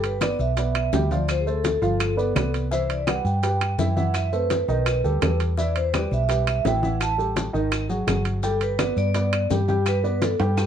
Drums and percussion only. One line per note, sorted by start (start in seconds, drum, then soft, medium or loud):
0.04 high conga soft
0.04 high timbale medium
0.04 maracas soft
0.21 high bongo medium
0.21 high conga medium
0.21 high timbale medium
0.21 claves medium
0.21 maracas medium
0.39 high bongo soft
0.39 maracas soft
0.57 high bongo medium
0.57 high conga soft
0.57 high timbale medium
0.57 maracas medium
0.75 high bongo soft
0.75 high conga soft
0.75 high timbale medium
0.75 claves medium
0.75 maracas soft
0.93 high bongo soft
0.93 low bongo medium
0.93 high conga medium
0.93 low timbale medium
0.93 maracas medium
1.11 high bongo soft
1.11 high conga medium
1.11 maracas soft
1.28 high bongo medium
1.28 high conga soft
1.28 high timbale medium
1.28 claves medium
1.28 maracas medium
1.46 high conga soft
1.46 maracas soft
1.64 high bongo medium
1.64 high conga medium
1.64 high timbale medium
1.64 maracas medium
1.82 high bongo soft
1.82 high conga soft
1.82 maracas soft
2.00 high bongo medium
2.00 high conga soft
2.00 high timbale medium
2.00 claves medium
2.00 maracas medium
2.18 high bongo soft
2.18 high conga soft
2.18 maracas soft
2.36 high bongo soft
2.36 low bongo medium
2.36 high conga medium
2.36 high timbale medium
2.36 low timbale medium
2.36 claves medium
2.36 maracas medium
2.54 high bongo soft
2.54 high conga soft
2.54 high timbale medium
2.54 maracas soft
2.72 high bongo medium
2.72 high conga soft
2.72 maracas medium
2.89 high conga soft
2.89 high timbale medium
2.89 maracas soft
3.07 high bongo medium
3.07 high conga medium
3.07 high timbale medium
3.07 claves medium
3.07 maracas medium
3.25 high bongo soft
3.25 maracas soft
3.43 high bongo medium
3.43 high conga soft
3.43 high timbale medium
3.43 maracas medium
3.61 high bongo soft
3.61 high conga soft
3.61 high timbale medium
3.61 claves medium
3.61 maracas soft
3.79 high bongo soft
3.79 low bongo medium
3.79 high conga medium
3.79 maracas medium
3.97 high bongo soft
3.97 high conga medium
3.97 maracas soft
4.14 high bongo medium
4.14 high conga soft
4.14 high timbale medium
4.14 claves medium
4.14 maracas medium
4.33 high conga soft
4.33 maracas soft
4.50 high bongo medium
4.50 high conga medium
4.50 high timbale medium
4.50 maracas medium
4.68 high bongo soft
4.68 high conga soft
4.68 maracas soft
4.86 high bongo medium
4.86 high conga soft
4.86 high timbale medium
4.86 claves medium
4.86 maracas medium
5.04 high bongo soft
5.04 high conga soft
5.04 maracas soft
5.22 high bongo soft
5.22 low bongo medium
5.22 high conga medium
5.22 high timbale medium
5.22 low timbale medium
5.22 claves medium
5.22 maracas medium
5.40 high bongo soft
5.40 high conga soft
5.40 high timbale medium
5.40 maracas soft
5.57 high bongo medium
5.57 high conga soft
5.57 maracas medium
5.76 high conga soft
5.76 high timbale medium
5.76 maracas soft
5.94 high bongo medium
5.94 high conga medium
5.94 high timbale medium
5.94 claves medium
5.94 maracas medium
6.11 high bongo soft
6.11 maracas soft
6.29 high bongo medium
6.29 high conga soft
6.29 high timbale medium
6.29 maracas medium
6.47 high bongo soft
6.47 high conga soft
6.47 high timbale medium
6.47 claves medium
6.47 maracas soft
6.65 high bongo soft
6.65 low bongo medium
6.65 high conga medium
6.65 low timbale medium
6.65 maracas medium
6.83 high bongo soft
6.83 high conga medium
6.83 maracas soft
7.01 high bongo medium
7.01 high conga soft
7.01 high timbale medium
7.01 claves medium
7.01 maracas medium
7.19 high conga soft
7.19 maracas soft
7.36 high bongo medium
7.36 high conga medium
7.36 high timbale medium
7.36 maracas medium
7.54 high bongo soft
7.54 high conga soft
7.54 maracas soft
7.72 high bongo medium
7.72 high conga soft
7.72 high timbale medium
7.72 claves medium
7.72 maracas medium
7.90 high bongo soft
7.90 high conga soft
7.90 maracas soft
8.08 high bongo soft
8.08 low bongo medium
8.08 high conga medium
8.08 high timbale medium
8.08 claves medium
8.08 maracas medium
8.25 high bongo soft
8.25 high conga soft
8.25 high timbale medium
8.25 maracas soft
8.43 high bongo medium
8.43 high conga soft
8.43 maracas medium
8.61 high conga soft
8.61 high timbale medium
8.61 maracas soft
8.79 high bongo medium
8.79 high conga medium
8.79 high timbale medium
8.79 claves medium
8.79 maracas medium
8.97 high bongo soft
8.97 maracas soft
9.14 high bongo medium
9.14 high conga soft
9.14 high timbale medium
9.14 maracas medium
9.32 high bongo soft
9.32 high conga soft
9.32 high timbale medium
9.32 claves medium
9.32 maracas soft
9.51 high bongo soft
9.51 low bongo medium
9.51 high conga medium
9.51 maracas medium
9.68 high bongo soft
9.68 high conga medium
9.68 maracas soft
9.86 high bongo medium
9.86 high conga soft
9.86 high timbale medium
9.86 claves medium
9.86 maracas medium
10.04 high conga soft
10.04 maracas soft
10.22 high bongo medium
10.22 high conga medium
10.22 high timbale medium
10.22 maracas medium
10.40 high bongo soft
10.40 high timbale medium
10.40 maracas soft
10.57 high bongo medium
10.57 high conga soft
10.57 high timbale medium
10.57 claves medium
10.57 maracas medium